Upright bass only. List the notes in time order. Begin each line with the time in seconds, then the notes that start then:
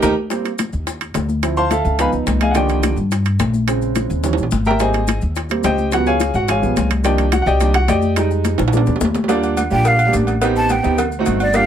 0.03 D#2
0.73 D#2
1.15 D2
1.85 C#2
2.12 C#2
2.27 C2
2.96 G2
3.39 A#1
4.10 D#2
4.38 A#1
4.52 G#1
5.22 D#2
5.64 C#2
6.34 G#1
6.63 A#1
6.76 C2
7.46 C2
7.88 F2
8.59 A#1
8.87 D2
9.00 D#2
9.71 A#1
10.13 A1
10.84 D2
11.27 G1